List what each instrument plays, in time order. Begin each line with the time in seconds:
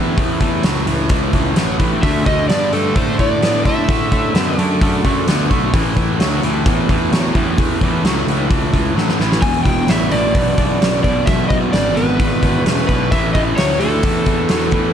Already playing: picked electric bass E2, overdriven electric guitar A2 E3
0.17 picked electric bass E2, overdriven electric guitar A2 E3, kick, open hi-hat
0.41 picked electric bass E2, overdriven electric guitar A2 E3, kick, open hi-hat
0.63 picked electric bass C#2, overdriven electric guitar A2 F#3, snare, open hi-hat
0.87 picked electric bass C#2, overdriven electric guitar A2 E3, open hi-hat
1.09 picked electric bass C#2, overdriven electric guitar A2 E3, kick, open hi-hat
1.33 picked electric bass C#2, overdriven electric guitar A2 E3, kick, open hi-hat
1.56 picked electric bass A1, overdriven electric guitar A2 F#3, snare, open hi-hat
1.79 picked electric bass A1, overdriven electric guitar A2 E3, kick, open hi-hat
2.03 picked electric bass D2, overdriven electric guitar D3 A3, electric slide guitar E5, kick, open hi-hat
2.26 picked electric bass D2, overdriven electric guitar D3 A3, electric slide guitar D#5, kick, open hi-hat
2.49 picked electric bass G2, overdriven electric guitar D3 B3, electric slide guitar D5, snare, open hi-hat
2.73 picked electric bass G2, overdriven electric guitar D3 A3, electric slide guitar A4, open hi-hat
2.95 picked electric bass A2, overdriven electric guitar D3 A3, electric slide guitar C5, kick, open hi-hat
3.19 picked electric bass A2, overdriven electric guitar D3 A3, electric slide guitar D5, kick, open hi-hat
3.42 picked electric bass A2, overdriven electric guitar D3 B3, snare, open hi-hat
3.65 picked electric bass A2, overdriven electric guitar D3 A3, electric slide guitar E5, kick, open hi-hat
3.89 picked electric bass A2, overdriven electric guitar D3 A3, kick, open hi-hat
4.12 picked electric bass A2, overdriven electric guitar D3 A3, kick, open hi-hat
4.34 picked electric bass F#2, overdriven electric guitar D3 B3, snare, open hi-hat
4.56 picked electric bass F#2, overdriven electric guitar D3 A3, electric slide guitar D5, open hi-hat
4.81 picked electric bass F#2, overdriven electric guitar D3 A3, kick, open hi-hat
5.05 picked electric bass F#2, overdriven electric guitar D3 A3, kick, open hi-hat
5.27 picked electric bass D2, overdriven electric guitar D3 B3, snare, open hi-hat
5.50 picked electric bass B1, overdriven electric guitar D3 A3, kick, open hi-hat
5.74 picked electric bass A1, overdriven electric guitar A2 E3, kick, open hi-hat
5.96 picked electric bass A1, overdriven electric guitar A2 E3, kick, open hi-hat
6.20 picked electric bass D2, overdriven electric guitar A2 F#3, snare, open hi-hat
6.42 picked electric bass D2, overdriven electric guitar A2 E3, open hi-hat
6.66 picked electric bass E2, overdriven electric guitar A2 E3, kick, open hi-hat
6.89 picked electric bass E2, overdriven electric guitar A2 E3, kick, open hi-hat
7.11 picked electric bass E2, overdriven electric guitar A2 F#3, snare, open hi-hat
7.35 picked electric bass E2, overdriven electric guitar A2 E3, kick, open hi-hat
7.58 picked electric bass E2, overdriven electric guitar A2 E3, kick, open hi-hat
7.81 picked electric bass E2, overdriven electric guitar A2 E3, kick, open hi-hat
8.04 picked electric bass C#2, overdriven electric guitar A2 F#3, snare, open hi-hat
8.26 picked electric bass C#2, overdriven electric guitar A2 E3, open hi-hat
8.50 picked electric bass C#2, overdriven electric guitar A2 E3, kick, open hi-hat
8.73 picked electric bass C#2, overdriven electric guitar A2 E3, kick, open hi-hat
8.95 picked electric bass A1, overdriven electric guitar A2 F#3, snare
9.09 snare
9.20 picked electric bass A1, overdriven electric guitar A2 E3, snare
9.32 snare
9.42 picked electric bass E1, overdriven electric guitar E2 B2, electric slide guitar G#5, kick, open hi-hat
9.63 picked electric bass E1, overdriven electric guitar E2 B2, electric slide guitar G5, kick, open hi-hat
9.87 picked electric bass A1, overdriven electric guitar E2 C#3, electric slide guitar E5, snare, open hi-hat
10.12 picked electric bass A1, overdriven electric guitar E2 B2, electric slide guitar D5, open hi-hat
10.34 picked electric bass B1, overdriven electric guitar E2 B2, kick, open hi-hat
10.58 picked electric bass B1, overdriven electric guitar E2 B2, kick, open hi-hat
10.81 picked electric bass B1, overdriven electric guitar E2 C#3, snare, open hi-hat
11.03 picked electric bass B1, overdriven electric guitar E2 B2, electric slide guitar D5, kick, open hi-hat
11.26 picked electric bass B1, overdriven electric guitar E2 B2, electric slide guitar E5, kick, open hi-hat
11.49 picked electric bass B1, overdriven electric guitar E2 B2, electric slide guitar D#5, kick, open hi-hat
11.72 picked electric bass G#1, overdriven electric guitar E2 C#3, electric slide guitar D5, snare, open hi-hat
11.96 picked electric bass G#1, overdriven electric guitar E2 B2, electric slide guitar B4, open hi-hat
12.19 picked electric bass G#1, overdriven electric guitar E2 B2, kick, open hi-hat
12.43 picked electric bass G#1, overdriven electric guitar E2 B2, kick, open hi-hat
12.65 picked electric bass E1, overdriven electric guitar E2 C#3, snare, open hi-hat
12.88 picked electric bass B1, overdriven electric guitar E2 B2, electric slide guitar B4, kick, open hi-hat
13.11 picked electric bass A1, overdriven electric guitar A2 E3, electric slide guitar E5, kick, open hi-hat
13.33 picked electric bass A1, overdriven electric guitar A2 E3, electric slide guitar D#5, kick, open hi-hat
13.57 picked electric bass D2, overdriven electric guitar A2 F#3, electric slide guitar C#5, snare, open hi-hat
13.80 picked electric bass D2, overdriven electric guitar A2 E3, electric slide guitar A4, open hi-hat
14.03 picked electric bass E2, overdriven electric guitar A2 E3, kick, open hi-hat
14.26 picked electric bass E2, overdriven electric guitar A2 E3, kick, open hi-hat
14.49 picked electric bass E2, overdriven electric guitar A2 F#3, snare, open hi-hat
14.71 picked electric bass E2, overdriven electric guitar A2 E3, kick, open hi-hat